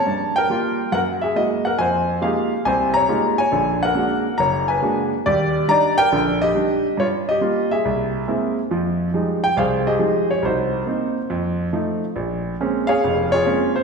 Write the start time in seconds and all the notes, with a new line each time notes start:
Already playing: C#5 A5
0.06 G2
0.36 A#4 G5
0.50 G3 A#3 F4
0.92 F#2 A#4 F#5
1.22 G#4 E5
1.35 G#3 A#3 E4 F#4 D#5
1.65 A#4 F#5
1.79 F2 C5 G#5
2.21 G#3 A#3 D#4 F4 G4 G#4 F5
2.65 C2 C3 C5 G#5
2.94 C#5 A#5
3.08 G#3 A#3 D#4 F4 G4
3.38 C#5 G#5
3.52 A#1 D3
3.83 A#4 F#5
3.94 G#3 A#3 D4 F#4
4.38 F#1 C#5 A#5
4.68 B4 G#5
4.82 G#3 A#3 D4 F#4
5.26 D#2 G3 G4 D5
5.68 G3 D4 D#4 D5 A#5
5.98 A#4 G5
6.12 A#1 D3
6.42 G4 D#5
6.55 G3 D4 D#4
6.97 G2 F4 C#5
7.29 G4 D#5
7.41 G3 A#3 F4
7.71 G#4 E5
7.85 C2
8.28 G#3 A#3 C4 E4
8.71 F2 F3
9.14 F3 G3 G#3 D#4
9.44 G5
9.57 C2 G#4 C5 F5
9.87 G4 G#4 D#5
9.99 F3 G3 G#3 D#4
10.31 C#5
10.42 C2 D#4 F#4 C5
10.87 A#3 C4 D#4
11.30 F2
11.73 F3 A3 D#4
12.16 A#1
12.60 G#3 A#3 C4 C#4
12.87 G#4 C#5 F5
13.04 F1 F2
13.32 F4 G#4 C#5
13.45 G#3 A#3 C4 C#4
13.76 C5